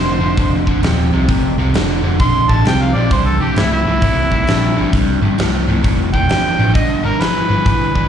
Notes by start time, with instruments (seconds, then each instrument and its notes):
Already playing: picked electric bass F1, overdriven electric guitar F2 D3, harmonica C5
0.21 picked electric bass F1, overdriven electric guitar F2 D3
0.37 picked electric bass F1, overdriven electric guitar F2 D3, kick, open hi-hat
0.67 overdriven electric guitar F2 D3, kick
0.83 picked electric bass D#1, overdriven electric guitar F2 C3, snare, open hi-hat
1.13 picked electric bass C2, overdriven electric guitar F2 C3
1.29 picked electric bass F1, overdriven electric guitar F2 C3, kick, open hi-hat
1.58 picked electric bass C2, overdriven electric guitar F2 C3
1.74 picked electric bass F1, overdriven electric guitar F2 D3, snare, open hi-hat
2.03 picked electric bass F1, overdriven electric guitar F2 D3
2.20 picked electric bass A#1, overdriven electric guitar F2 D3, harmonica C6, kick, open hi-hat
2.49 picked electric bass A1, overdriven electric guitar F2 D3, harmonica A5, kick
2.65 picked electric bass C2, overdriven electric guitar F2 C3, harmonica G5, snare, open hi-hat
2.82 harmonica F5
2.95 picked electric bass A#1, overdriven electric guitar F2 C3, harmonica D5
3.10 picked electric bass C1, overdriven electric guitar C2 G2, harmonica C5, kick, open hi-hat
3.27 harmonica A4
3.40 picked electric bass C1, overdriven electric guitar C2 G2, harmonica G4
3.56 picked electric bass C1, overdriven electric guitar C2 A2, harmonica E4, snare, open hi-hat
3.72 harmonica E4
3.86 picked electric bass C1, overdriven electric guitar C2 A2
4.02 picked electric bass C1, overdriven electric guitar C2 A2, kick, open hi-hat
4.31 overdriven electric guitar C2 A2, kick
4.47 picked electric bass A#1, overdriven electric guitar C2 G2, snare, open hi-hat
4.76 picked electric bass G1, overdriven electric guitar C2 G2
4.92 picked electric bass C1, overdriven electric guitar C2 G2, kick, open hi-hat
5.22 picked electric bass G1, overdriven electric guitar C2 G2
5.38 picked electric bass C1, overdriven electric guitar C2 A2, snare, open hi-hat
5.67 picked electric bass C1, overdriven electric guitar C2 A2
5.83 picked electric bass F1, overdriven electric guitar C2 A2, kick, open hi-hat
6.13 picked electric bass E1, overdriven electric guitar C2 A2, harmonica G5, kick
6.29 picked electric bass G1, overdriven electric guitar C2 G2, snare, open hi-hat
6.58 picked electric bass A1, overdriven electric guitar C2 G2
6.74 picked electric bass G1, overdriven electric guitar G2 D3, harmonica D#5, kick, open hi-hat
7.03 picked electric bass G1, overdriven electric guitar G2 D3, harmonica A#4
7.19 picked electric bass G1, overdriven electric guitar G2 E3, harmonica B4, snare, open hi-hat
7.49 picked electric bass G1, overdriven electric guitar G2 E3
7.65 picked electric bass G1, overdriven electric guitar G2 E3, kick, open hi-hat
7.95 overdriven electric guitar G2 E3, kick